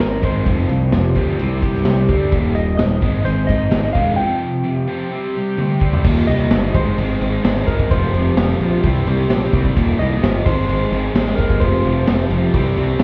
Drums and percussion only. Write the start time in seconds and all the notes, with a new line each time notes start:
0.00 snare, ride
0.23 kick, ride
0.46 kick, ride
0.69 ride
0.92 snare, ride
1.16 kick, ride
1.39 ride
1.62 kick, ride
1.74 snare
1.85 snare, ride
2.08 kick, ride
2.32 kick, ride
2.55 ride
2.79 snare, ride
3.02 kick, ride
3.26 ride
3.49 kick, ride
3.72 snare, ride
3.95 kick, ride
5.58 high tom
5.81 kick
5.93 floor tom
6.04 kick, crash
6.28 crash
6.51 snare, crash
6.75 kick, crash
6.98 crash
7.21 crash
7.45 snare, crash
7.57 snare
7.68 kick, crash
7.79 kick
7.91 kick, crash
8.14 crash
8.37 snare, crash
8.61 crash
8.84 kick, crash
9.07 crash
9.30 snare, crash
9.42 snare
9.53 kick, crash
9.65 kick
9.77 kick, crash
10.01 crash
10.23 snare, crash
10.46 kick, crash
10.69 crash
10.93 crash
11.16 snare, crash
11.27 snare
11.38 kick, crash
11.50 kick
11.61 kick, crash
11.84 crash
12.07 snare, crash
12.30 crash
12.54 kick, crash
12.77 crash
13.00 snare, crash